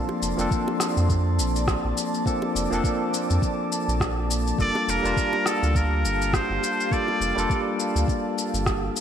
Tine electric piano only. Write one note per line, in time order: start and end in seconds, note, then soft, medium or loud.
0.00 0.34 F3 medium
0.00 0.34 A#3 medium
0.00 0.35 C4 medium
0.00 0.35 D4 medium
0.00 0.35 A4 medium
0.37 2.22 F3 medium
0.37 2.22 A#3 medium
0.37 2.23 C4 medium
0.37 2.24 D4 medium
0.41 2.24 A4 medium
2.25 2.67 F3 medium
2.25 2.68 A#3 medium
2.25 2.68 C4 medium
2.25 2.68 D4 medium
2.25 2.68 A4 medium
2.70 4.55 F3 medium
2.70 4.56 A#3 medium
2.70 4.56 C4 medium
2.70 4.57 D4 medium
2.74 4.57 A4 medium
4.58 5.00 G3 medium
4.58 5.00 A#3 medium
4.58 5.01 D4 medium
4.58 5.01 F4 medium
4.58 5.01 A4 medium
5.03 6.88 G3 medium
5.03 6.88 A#3 medium
5.03 6.89 D4 medium
5.03 6.89 F4 medium
5.07 6.90 A5 medium
6.91 7.33 G3 medium
6.91 7.33 A#3 medium
6.91 7.33 D4 medium
6.91 7.34 F4 medium
6.91 7.34 A4 medium
7.35 8.93 G3 medium
7.35 8.94 A#3 medium
7.35 8.94 D4 medium
7.35 8.95 F4 medium
7.35 8.95 A4 loud